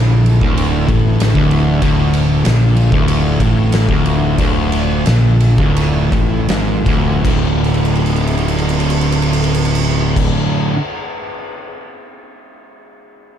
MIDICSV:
0, 0, Header, 1, 5, 480
1, 0, Start_track
1, 0, Key_signature, -1, "minor"
1, 0, Tempo, 628272
1, 1387, Time_signature, 4, 2, 24, 8
1, 2839, Tempo, 679502
1, 4279, Tempo, 745342
1, 5239, Tempo, 780234
1, 9016, End_track
2, 0, Start_track
2, 0, Title_t, "Synth drone"
2, 0, Program_c, 0, 95
2, 0, Note_on_c, 0, 50, 79
2, 0, Note_on_c, 0, 64, 88
2, 0, Note_on_c, 0, 69, 72
2, 1360, Note_off_c, 0, 64, 0
2, 1389, Note_on_c, 0, 65, 84
2, 5214, Note_off_c, 0, 65, 0
2, 5215, Note_off_c, 0, 69, 0
2, 5216, Note_off_c, 0, 50, 0
2, 5246, Note_on_c, 0, 64, 86
2, 5251, Note_on_c, 0, 50, 75
2, 5251, Note_on_c, 0, 57, 74
2, 7112, Note_off_c, 0, 64, 0
2, 7115, Note_off_c, 0, 50, 0
2, 7115, Note_off_c, 0, 57, 0
2, 9016, End_track
3, 0, Start_track
3, 0, Title_t, "Distorted electric guitar"
3, 0, Program_c, 1, 30
3, 0, Note_on_c, 1, 46, 105
3, 309, Note_off_c, 1, 46, 0
3, 317, Note_on_c, 1, 38, 111
3, 666, Note_off_c, 1, 38, 0
3, 672, Note_on_c, 1, 45, 97
3, 1022, Note_off_c, 1, 45, 0
3, 1033, Note_on_c, 1, 38, 97
3, 1381, Note_off_c, 1, 38, 0
3, 1390, Note_on_c, 1, 38, 117
3, 1859, Note_off_c, 1, 38, 0
3, 1871, Note_on_c, 1, 46, 104
3, 2222, Note_off_c, 1, 46, 0
3, 2232, Note_on_c, 1, 38, 103
3, 2588, Note_off_c, 1, 38, 0
3, 2603, Note_on_c, 1, 45, 104
3, 2953, Note_off_c, 1, 45, 0
3, 2962, Note_on_c, 1, 38, 98
3, 3302, Note_off_c, 1, 38, 0
3, 3316, Note_on_c, 1, 38, 113
3, 3782, Note_off_c, 1, 38, 0
3, 3793, Note_on_c, 1, 46, 97
3, 4152, Note_off_c, 1, 46, 0
3, 4162, Note_on_c, 1, 38, 94
3, 4508, Note_off_c, 1, 38, 0
3, 4513, Note_on_c, 1, 45, 95
3, 4743, Note_off_c, 1, 45, 0
3, 4749, Note_on_c, 1, 44, 95
3, 4984, Note_off_c, 1, 44, 0
3, 4995, Note_on_c, 1, 38, 107
3, 5225, Note_off_c, 1, 38, 0
3, 5232, Note_on_c, 1, 38, 96
3, 5247, Note_on_c, 1, 45, 102
3, 5258, Note_on_c, 1, 50, 99
3, 7386, Note_off_c, 1, 38, 0
3, 7400, Note_off_c, 1, 45, 0
3, 7411, Note_off_c, 1, 50, 0
3, 9016, End_track
4, 0, Start_track
4, 0, Title_t, "Fingered electric bass"
4, 0, Program_c, 2, 33
4, 0, Note_on_c, 2, 34, 93
4, 295, Note_off_c, 2, 34, 0
4, 320, Note_on_c, 2, 26, 94
4, 650, Note_off_c, 2, 26, 0
4, 677, Note_on_c, 2, 33, 101
4, 1007, Note_off_c, 2, 33, 0
4, 1035, Note_on_c, 2, 26, 93
4, 1365, Note_off_c, 2, 26, 0
4, 1393, Note_on_c, 2, 26, 92
4, 1837, Note_off_c, 2, 26, 0
4, 1880, Note_on_c, 2, 34, 100
4, 2209, Note_off_c, 2, 34, 0
4, 2234, Note_on_c, 2, 26, 94
4, 2571, Note_off_c, 2, 26, 0
4, 2602, Note_on_c, 2, 33, 103
4, 2936, Note_off_c, 2, 33, 0
4, 2960, Note_on_c, 2, 26, 88
4, 3284, Note_off_c, 2, 26, 0
4, 3313, Note_on_c, 2, 26, 91
4, 3760, Note_off_c, 2, 26, 0
4, 3797, Note_on_c, 2, 34, 94
4, 4135, Note_off_c, 2, 34, 0
4, 4160, Note_on_c, 2, 26, 90
4, 4490, Note_off_c, 2, 26, 0
4, 4517, Note_on_c, 2, 33, 100
4, 4735, Note_off_c, 2, 33, 0
4, 4756, Note_on_c, 2, 32, 91
4, 4978, Note_off_c, 2, 32, 0
4, 4994, Note_on_c, 2, 26, 91
4, 5224, Note_off_c, 2, 26, 0
4, 5242, Note_on_c, 2, 26, 93
4, 7110, Note_off_c, 2, 26, 0
4, 9016, End_track
5, 0, Start_track
5, 0, Title_t, "Drums"
5, 198, Note_on_c, 9, 51, 62
5, 274, Note_off_c, 9, 51, 0
5, 316, Note_on_c, 9, 36, 99
5, 393, Note_off_c, 9, 36, 0
5, 439, Note_on_c, 9, 51, 84
5, 516, Note_off_c, 9, 51, 0
5, 676, Note_on_c, 9, 36, 97
5, 677, Note_on_c, 9, 51, 62
5, 753, Note_off_c, 9, 36, 0
5, 754, Note_off_c, 9, 51, 0
5, 918, Note_on_c, 9, 51, 99
5, 930, Note_on_c, 9, 38, 116
5, 995, Note_off_c, 9, 51, 0
5, 1006, Note_off_c, 9, 38, 0
5, 1033, Note_on_c, 9, 36, 98
5, 1110, Note_off_c, 9, 36, 0
5, 1154, Note_on_c, 9, 51, 68
5, 1230, Note_off_c, 9, 51, 0
5, 1390, Note_on_c, 9, 36, 99
5, 1390, Note_on_c, 9, 51, 87
5, 1466, Note_off_c, 9, 51, 0
5, 1467, Note_off_c, 9, 36, 0
5, 1631, Note_on_c, 9, 51, 76
5, 1708, Note_off_c, 9, 51, 0
5, 1871, Note_on_c, 9, 51, 100
5, 1883, Note_on_c, 9, 38, 109
5, 1948, Note_off_c, 9, 51, 0
5, 1959, Note_off_c, 9, 38, 0
5, 2112, Note_on_c, 9, 51, 73
5, 2189, Note_off_c, 9, 51, 0
5, 2232, Note_on_c, 9, 36, 105
5, 2308, Note_off_c, 9, 36, 0
5, 2353, Note_on_c, 9, 51, 98
5, 2429, Note_off_c, 9, 51, 0
5, 2599, Note_on_c, 9, 36, 94
5, 2600, Note_on_c, 9, 51, 76
5, 2675, Note_off_c, 9, 36, 0
5, 2676, Note_off_c, 9, 51, 0
5, 2844, Note_on_c, 9, 51, 104
5, 2855, Note_on_c, 9, 38, 110
5, 2915, Note_off_c, 9, 51, 0
5, 2925, Note_off_c, 9, 38, 0
5, 2960, Note_on_c, 9, 36, 98
5, 3030, Note_off_c, 9, 36, 0
5, 3079, Note_on_c, 9, 51, 74
5, 3150, Note_off_c, 9, 51, 0
5, 3310, Note_on_c, 9, 51, 94
5, 3311, Note_on_c, 9, 36, 98
5, 3381, Note_off_c, 9, 36, 0
5, 3381, Note_off_c, 9, 51, 0
5, 3549, Note_on_c, 9, 51, 71
5, 3620, Note_off_c, 9, 51, 0
5, 3786, Note_on_c, 9, 51, 90
5, 3797, Note_on_c, 9, 38, 102
5, 3857, Note_off_c, 9, 51, 0
5, 3867, Note_off_c, 9, 38, 0
5, 4032, Note_on_c, 9, 51, 69
5, 4102, Note_off_c, 9, 51, 0
5, 4158, Note_on_c, 9, 36, 101
5, 4228, Note_off_c, 9, 36, 0
5, 4286, Note_on_c, 9, 51, 88
5, 4351, Note_off_c, 9, 51, 0
5, 4515, Note_on_c, 9, 36, 101
5, 4521, Note_on_c, 9, 51, 60
5, 4580, Note_off_c, 9, 36, 0
5, 4585, Note_off_c, 9, 51, 0
5, 4750, Note_on_c, 9, 51, 90
5, 4760, Note_on_c, 9, 38, 117
5, 4814, Note_off_c, 9, 51, 0
5, 4824, Note_off_c, 9, 38, 0
5, 4992, Note_on_c, 9, 36, 102
5, 4994, Note_on_c, 9, 51, 68
5, 5056, Note_off_c, 9, 36, 0
5, 5058, Note_off_c, 9, 51, 0
5, 5240, Note_on_c, 9, 36, 103
5, 5242, Note_on_c, 9, 49, 92
5, 5301, Note_off_c, 9, 36, 0
5, 5303, Note_off_c, 9, 49, 0
5, 5483, Note_on_c, 9, 57, 45
5, 5544, Note_on_c, 9, 51, 49
5, 5545, Note_off_c, 9, 57, 0
5, 5606, Note_off_c, 9, 51, 0
5, 5610, Note_on_c, 9, 57, 49
5, 5672, Note_off_c, 9, 57, 0
5, 5676, Note_on_c, 9, 51, 52
5, 5737, Note_off_c, 9, 51, 0
5, 5739, Note_on_c, 9, 57, 54
5, 5801, Note_off_c, 9, 57, 0
5, 5803, Note_on_c, 9, 51, 58
5, 5865, Note_off_c, 9, 51, 0
5, 5872, Note_on_c, 9, 57, 59
5, 5933, Note_off_c, 9, 57, 0
5, 5934, Note_on_c, 9, 51, 65
5, 5996, Note_off_c, 9, 51, 0
5, 6000, Note_on_c, 9, 57, 62
5, 6062, Note_off_c, 9, 57, 0
5, 6063, Note_on_c, 9, 51, 65
5, 6125, Note_off_c, 9, 51, 0
5, 6127, Note_on_c, 9, 57, 66
5, 6189, Note_off_c, 9, 57, 0
5, 6195, Note_on_c, 9, 51, 73
5, 6257, Note_off_c, 9, 51, 0
5, 6257, Note_on_c, 9, 57, 72
5, 6318, Note_off_c, 9, 57, 0
5, 6326, Note_on_c, 9, 51, 69
5, 6387, Note_off_c, 9, 51, 0
5, 6394, Note_on_c, 9, 57, 75
5, 6455, Note_off_c, 9, 57, 0
5, 6455, Note_on_c, 9, 51, 72
5, 6516, Note_off_c, 9, 51, 0
5, 6523, Note_on_c, 9, 57, 78
5, 6584, Note_off_c, 9, 57, 0
5, 6588, Note_on_c, 9, 51, 85
5, 6649, Note_off_c, 9, 51, 0
5, 6654, Note_on_c, 9, 57, 86
5, 6716, Note_off_c, 9, 57, 0
5, 6719, Note_on_c, 9, 51, 81
5, 6780, Note_off_c, 9, 51, 0
5, 6780, Note_on_c, 9, 57, 91
5, 6841, Note_off_c, 9, 57, 0
5, 7035, Note_on_c, 9, 36, 93
5, 7037, Note_on_c, 9, 49, 90
5, 7097, Note_off_c, 9, 36, 0
5, 7099, Note_off_c, 9, 49, 0
5, 9016, End_track
0, 0, End_of_file